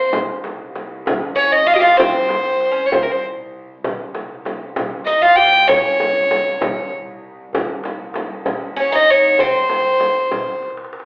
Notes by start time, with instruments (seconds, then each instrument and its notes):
Already playing: cello section C2, violin C5
0.13 cello section C2, frame drum, darbuka dum
0.44 darbuka tek, frame drum
0.75 darbuka tek, frame drum
1.06 darbuka dum, frame drum
1.36 oud C#4, violin C#5, darbuka ka
1.52 violin D#5
1.66 oud F4, violin F5
1.73 oud G4, violin D#5
1.80 oud F4, violin F5
1.97 oud C4, violin C5, darbuka dum, frame drum
2.29 darbuka tek, frame drum
2.45 darbuka ka
2.60 darbuka tek
2.71 oud C#4
2.86 violin C#5
2.92 violin C5, darbuka dum, frame drum
3.02 violin A#4
3.11 violin C5
3.53 darbuka ka
3.69 darbuka ka
3.84 cello section C2, frame drum, darbuka dum
4.15 darbuka tek, frame drum
4.45 darbuka tek, frame drum
4.76 frame drum, darbuka dum
5.05 oud D#4, violin D#5, darbuka ka
5.21 oud F4, violin F5
5.35 oud G4, violin G5
5.68 oud C#4, violin C#5, darbuka dum, frame drum
6.00 darbuka tek, frame drum
6.31 darbuka tek, frame drum
6.61 darbuka dum, frame drum
6.91 darbuka ka
7.53 cello section C2, darbuka dum, frame drum
7.84 darbuka tek, frame drum
8.14 darbuka tek, frame drum
8.45 darbuka dum, frame drum
8.76 oud C#4, violin C#5, darbuka ka
8.92 oud D#4, violin D#5
9.10 violin C#5
9.38 oud C4, violin C5, darbuka dum, frame drum
9.69 darbuka tek, frame drum
9.85 darbuka ka
10.00 darbuka tek, frame drum
10.31 darbuka dum, frame drum
10.62 darbuka tek
10.70 darbuka ka
10.77 darbuka tek
10.84 darbuka ka
10.93 darbuka tek
11.00 darbuka ka